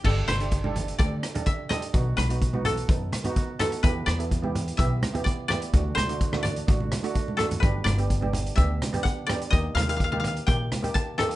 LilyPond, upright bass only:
\new Staff \with { instrumentName = "Upright bass" } { \clef bass \time 4/4 \key g \major \tempo 4 = 126 g,,8 g,,4. d,8 r4. | b,,8 b,,4. fis,8 r4. | e,8 e,4. b,,8 r4. | d,8 d,4. a,,8 r4. |
g,,8 g,,4. d,8 r4. | ees,8 ees,4. bes,,8 r4. | }